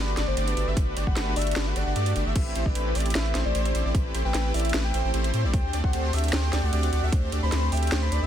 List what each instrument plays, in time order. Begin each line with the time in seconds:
Already playing: sub bass G1, supersaw synth A3 D4 F#4 G4 B4, digital synth lead B4, soft synth lead D5
0.17 sub bass G1, supersaw synth A3 D4 F#4 G4 D5, digital synth lead D5, snare, closed hi-hat
0.27 sub bass G1, supersaw synth A3 D4 F#4 G4 D5, soft synth lead C5, digital synth lead D5
0.37 sub bass G1, supersaw synth A3 D4 F#4 G4 D5, digital synth lead D5, closed hi-hat
0.47 soft synth lead B4, closed hi-hat
0.57 sub bass G1, supersaw synth A3 D4 F#4 G4 D5, digital synth lead D5, closed hi-hat
0.67 sub bass G1, supersaw synth A3 D4 F#4 G4 E5, digital synth lead E5
0.77 sub bass G1, supersaw synth D4 F#4 G4 B4, digital synth lead B4, kick, closed hi-hat
0.96 sub bass G1, supersaw synth A3 D4 F#4 G4 D5, digital synth lead D5, closed hi-hat
1.07 sub bass G1, supersaw synth A3 D4 F#4 G4 B4, digital synth lead B4, soft synth lead F#5, kick
1.16 sub bass G1, supersaw synth A3 D4 F#4 G4 B4, digital synth lead B4, snare, closed hi-hat
1.36 sub bass G1, supersaw synth A3 D4 F#4 G4 E5, soft synth lead D5, digital synth lead E5, open hi-hat
1.42 closed hi-hat
1.47 closed hi-hat
1.51 closed hi-hat
1.56 sub bass G1, supersaw synth A3 D4 F#4 G4 B4, digital synth lead B4, snare, closed hi-hat
1.67 soft synth lead F#5
1.76 sub bass G1, supersaw synth A3 D4 F#4 G4 D5, digital synth lead D5, closed hi-hat
1.86 sub bass G1, supersaw synth A3 D4 F#4 G4 D5, digital synth lead D5
1.96 sub bass G2, supersaw synth A3 D4 F#4 G4 D5, digital synth lead D5, closed hi-hat
2.06 closed hi-hat
2.16 sub bass G1, supersaw synth A3 D4 F#4 G4 D5, digital synth lead D5, closed hi-hat
2.26 sub bass G1, supersaw synth A3 D4 F#4 G4 E5, digital synth lead E5
2.35 sub bass A1, supersaw synth C4 E4 B4, digital synth lead B4, soft synth lead E5, kick, closed hi-hat, crash
2.55 sub bass A1, supersaw synth A3 C4 E4 G4 C5, digital synth lead C5, closed hi-hat
2.66 sub bass A1, supersaw synth A3 B4, digital synth lead B4, soft synth lead D5, kick
2.75 sub bass A1, supersaw synth A3 C4 E4 G4 B4, digital synth lead B4, closed hi-hat
2.95 sub bass A1, supersaw synth A3 C4 E4 G4 D5, digital synth lead D5, open hi-hat
3.00 closed hi-hat
3.06 closed hi-hat
3.10 closed hi-hat
3.15 sub bass A1, supersaw synth A3 C4 E4 G4 B4, digital synth lead B4, soft synth lead E5, snare, closed hi-hat
3.35 sub bass A1, supersaw synth A3 C4 E4 G4 C5, digital synth lead C5, snare, closed hi-hat
3.45 sub bass A1, supersaw synth A3 C4 E4 G4 C5, digital synth lead C5, soft synth lead D5
3.55 sub bass A1, supersaw synth A3 C4 E4 G4 C5, digital synth lead C5, closed hi-hat
3.65 soft synth lead D5, closed hi-hat
3.75 sub bass A1, supersaw synth A3 C4 E4 G4 C5, digital synth lead C5, closed hi-hat
3.85 sub bass A1, supersaw synth A3 C4 E4 G4 D5, digital synth lead D5
3.94 sub bass A1, supersaw synth A3 C4 E4 G4 B4, digital synth lead B4, kick, closed hi-hat
4.14 sub bass A1, supersaw synth A3 C4 E4 G4 C5, digital synth lead C5, closed hi-hat
4.25 sub bass A1, supersaw synth A3 C4 E4 G4 B4, digital synth lead B4, soft synth lead G5
4.34 sub bass A1, supersaw synth A3 C4 E4 G4 B4, digital synth lead B4, snare, closed hi-hat
4.54 sub bass A1, supersaw synth A3 C4 E4 G4 D5, digital synth lead D5, soft synth lead E5, open hi-hat
4.60 closed hi-hat
4.65 closed hi-hat
4.69 closed hi-hat
4.74 sub bass A1, supersaw synth A3 C4 E4 G4 B4, digital synth lead B4, snare, closed hi-hat
4.84 soft synth lead G5
4.94 sub bass A1, supersaw synth A3 C4 E4 G4 C5, digital synth lead C5, closed hi-hat
5.04 sub bass A1, supersaw synth A3 C4 E4 G4 C5, digital synth lead C5
5.14 sub bass A1, supersaw synth A3 C4 E4 G4 C5, digital synth lead C5, closed hi-hat
5.24 closed hi-hat
5.34 sub bass A2, supersaw synth A3 C4 E4 G4 C5, digital synth lead C5, closed hi-hat
5.44 sub bass A1, supersaw synth A3 C4 E4 G4 D5, digital synth lead D5
5.53 sub bass D2, digital synth lead C5, soft synth lead G5, kick, closed hi-hat
5.73 sub bass D2, supersaw synth A3 C4 D4 G4 D5, digital synth lead D5, closed hi-hat
5.84 sub bass D2, supersaw synth A3 C4 D4 G4 C5, digital synth lead C5, soft synth lead F#5, kick
5.93 sub bass D2, supersaw synth A3 C4 D4 G4 C5, digital synth lead C5, closed hi-hat
6.13 sub bass D2, supersaw synth A3 C4 D4 G4 E5, digital synth lead E5, open hi-hat
6.18 closed hi-hat
6.24 closed hi-hat
6.28 closed hi-hat
6.33 sub bass D2, supersaw synth A3 C4 D4 G4 C5, digital synth lead C5, soft synth lead G5, snare, closed hi-hat
6.53 sub bass D2, supersaw synth A3 C4 D4 G4 D5, digital synth lead D5, snare, closed hi-hat
6.63 sub bass D2, supersaw synth A3 C4 D4 G4 D5, digital synth lead D5, soft synth lead F#5
6.73 sub bass D2, supersaw synth A3 C4 D4 G4 D5, digital synth lead D5, closed hi-hat
6.83 soft synth lead F#5, closed hi-hat
6.92 sub bass D2, supersaw synth A3 C4 D4 G4 D5, digital synth lead D5, closed hi-hat
7.03 sub bass D2, supersaw synth A3 C4 D4 G4 E5, digital synth lead E5
7.12 sub bass D2, supersaw synth A3 C4 D4 G4 C5, digital synth lead C5, kick, closed hi-hat
7.32 sub bass D2, supersaw synth A3 C4 D4 G4 D5, digital synth lead D5, closed hi-hat
7.43 sub bass D2, supersaw synth A3 C4 D4 G4 C5, digital synth lead C5, soft synth lead B5
7.52 sub bass D2, supersaw synth A3 C4 D4 G4 C5, digital synth lead C5, snare, closed hi-hat
7.72 sub bass D2, supersaw synth A3 C4 D4 G4 E5, digital synth lead E5, soft synth lead G5, open hi-hat
7.77 closed hi-hat
7.83 closed hi-hat
7.87 closed hi-hat
7.92 sub bass D2, supersaw synth A3 C4 D4 G4 C5, digital synth lead C5, snare, closed hi-hat
8.02 soft synth lead B5
8.12 sub bass D2, supersaw synth A3 C4 D4 G4 D5, digital synth lead D5, closed hi-hat
8.22 sub bass D2, supersaw synth A3 C4 D4 G4 E5, digital synth lead E5